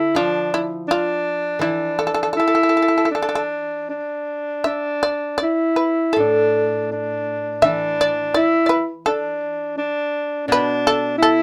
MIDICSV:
0, 0, Header, 1, 4, 480
1, 0, Start_track
1, 0, Tempo, 733496
1, 1049, Time_signature, 4, 2, 24, 8
1, 2023, Tempo, 771208
1, 3943, Tempo, 729927
1, 5383, Tempo, 710059
1, 7452, End_track
2, 0, Start_track
2, 0, Title_t, "Shamisen"
2, 0, Program_c, 0, 106
2, 0, Note_on_c, 0, 69, 63
2, 92, Note_off_c, 0, 69, 0
2, 107, Note_on_c, 0, 65, 70
2, 323, Note_off_c, 0, 65, 0
2, 353, Note_on_c, 0, 64, 59
2, 565, Note_off_c, 0, 64, 0
2, 595, Note_on_c, 0, 65, 68
2, 1034, Note_off_c, 0, 65, 0
2, 1057, Note_on_c, 0, 64, 58
2, 1277, Note_off_c, 0, 64, 0
2, 1301, Note_on_c, 0, 69, 57
2, 1340, Note_off_c, 0, 69, 0
2, 1354, Note_on_c, 0, 69, 43
2, 1391, Note_off_c, 0, 69, 0
2, 1403, Note_on_c, 0, 69, 48
2, 1440, Note_off_c, 0, 69, 0
2, 1459, Note_on_c, 0, 69, 38
2, 1492, Note_off_c, 0, 69, 0
2, 1524, Note_on_c, 0, 69, 42
2, 1550, Note_off_c, 0, 69, 0
2, 1568, Note_on_c, 0, 69, 36
2, 1596, Note_off_c, 0, 69, 0
2, 1620, Note_on_c, 0, 69, 38
2, 1647, Note_off_c, 0, 69, 0
2, 1668, Note_on_c, 0, 69, 34
2, 1695, Note_off_c, 0, 69, 0
2, 1723, Note_on_c, 0, 69, 34
2, 1747, Note_off_c, 0, 69, 0
2, 1762, Note_on_c, 0, 69, 30
2, 1791, Note_off_c, 0, 69, 0
2, 1812, Note_on_c, 0, 69, 33
2, 1841, Note_off_c, 0, 69, 0
2, 1848, Note_on_c, 0, 69, 29
2, 1879, Note_off_c, 0, 69, 0
2, 1887, Note_on_c, 0, 69, 34
2, 1927, Note_off_c, 0, 69, 0
2, 1948, Note_on_c, 0, 69, 34
2, 1983, Note_off_c, 0, 69, 0
2, 1997, Note_on_c, 0, 69, 36
2, 2032, Note_off_c, 0, 69, 0
2, 2059, Note_on_c, 0, 69, 36
2, 2086, Note_off_c, 0, 69, 0
2, 2106, Note_on_c, 0, 69, 44
2, 2134, Note_off_c, 0, 69, 0
2, 2145, Note_on_c, 0, 69, 35
2, 2177, Note_off_c, 0, 69, 0
2, 2187, Note_on_c, 0, 69, 46
2, 2222, Note_off_c, 0, 69, 0
2, 2988, Note_on_c, 0, 76, 62
2, 3212, Note_off_c, 0, 76, 0
2, 3228, Note_on_c, 0, 74, 64
2, 3439, Note_off_c, 0, 74, 0
2, 3446, Note_on_c, 0, 74, 63
2, 3681, Note_off_c, 0, 74, 0
2, 3686, Note_on_c, 0, 71, 48
2, 3913, Note_off_c, 0, 71, 0
2, 3913, Note_on_c, 0, 69, 51
2, 4150, Note_off_c, 0, 69, 0
2, 4894, Note_on_c, 0, 76, 73
2, 5122, Note_off_c, 0, 76, 0
2, 5148, Note_on_c, 0, 74, 68
2, 5361, Note_off_c, 0, 74, 0
2, 5369, Note_on_c, 0, 74, 68
2, 5558, Note_off_c, 0, 74, 0
2, 5583, Note_on_c, 0, 74, 39
2, 5601, Note_off_c, 0, 74, 0
2, 5604, Note_on_c, 0, 71, 57
2, 5838, Note_off_c, 0, 71, 0
2, 5851, Note_on_c, 0, 69, 57
2, 6082, Note_off_c, 0, 69, 0
2, 6840, Note_on_c, 0, 71, 82
2, 7056, Note_off_c, 0, 71, 0
2, 7076, Note_on_c, 0, 69, 78
2, 7293, Note_off_c, 0, 69, 0
2, 7316, Note_on_c, 0, 69, 77
2, 7452, Note_off_c, 0, 69, 0
2, 7452, End_track
3, 0, Start_track
3, 0, Title_t, "Alto saxophone"
3, 0, Program_c, 1, 65
3, 0, Note_on_c, 1, 64, 62
3, 102, Note_off_c, 1, 64, 0
3, 109, Note_on_c, 1, 62, 69
3, 466, Note_off_c, 1, 62, 0
3, 577, Note_on_c, 1, 62, 72
3, 1051, Note_off_c, 1, 62, 0
3, 1056, Note_on_c, 1, 62, 67
3, 1535, Note_off_c, 1, 62, 0
3, 1548, Note_on_c, 1, 64, 67
3, 2031, Note_off_c, 1, 64, 0
3, 2036, Note_on_c, 1, 62, 65
3, 2511, Note_off_c, 1, 62, 0
3, 2526, Note_on_c, 1, 62, 59
3, 2995, Note_off_c, 1, 62, 0
3, 2999, Note_on_c, 1, 62, 62
3, 3473, Note_off_c, 1, 62, 0
3, 3477, Note_on_c, 1, 64, 55
3, 3946, Note_off_c, 1, 64, 0
3, 3957, Note_on_c, 1, 62, 66
3, 4427, Note_off_c, 1, 62, 0
3, 4431, Note_on_c, 1, 62, 62
3, 4908, Note_off_c, 1, 62, 0
3, 4914, Note_on_c, 1, 62, 68
3, 5376, Note_off_c, 1, 62, 0
3, 5380, Note_on_c, 1, 64, 60
3, 5746, Note_off_c, 1, 64, 0
3, 5861, Note_on_c, 1, 62, 65
3, 6335, Note_off_c, 1, 62, 0
3, 6339, Note_on_c, 1, 62, 69
3, 6810, Note_off_c, 1, 62, 0
3, 6814, Note_on_c, 1, 62, 75
3, 7280, Note_off_c, 1, 62, 0
3, 7284, Note_on_c, 1, 64, 66
3, 7452, Note_off_c, 1, 64, 0
3, 7452, End_track
4, 0, Start_track
4, 0, Title_t, "Koto"
4, 0, Program_c, 2, 107
4, 0, Note_on_c, 2, 50, 43
4, 96, Note_on_c, 2, 53, 41
4, 562, Note_off_c, 2, 50, 0
4, 1042, Note_on_c, 2, 52, 46
4, 1529, Note_off_c, 2, 53, 0
4, 2501, Note_off_c, 2, 52, 0
4, 3935, Note_on_c, 2, 45, 44
4, 4892, Note_on_c, 2, 52, 44
4, 5378, Note_off_c, 2, 45, 0
4, 6342, Note_off_c, 2, 52, 0
4, 6813, Note_on_c, 2, 47, 50
4, 7452, Note_off_c, 2, 47, 0
4, 7452, End_track
0, 0, End_of_file